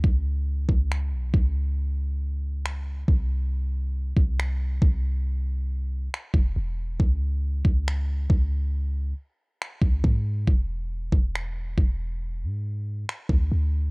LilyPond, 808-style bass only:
\new Staff \with { instrumentName = "808-style bass" } { \clef bass \time 4/4 \key cis \minor \tempo 4 = 69 cis,8. cis,8 b,,16 cis,2 c,8~ | c,8. c,8. c,4. r16 e,,16 e,,8 | cis,8. cis,8. cis,4 r8. cis,16 gis,8 | e,,8. e,,8. e,,8. gis,8. r16 d,16 d,8 | }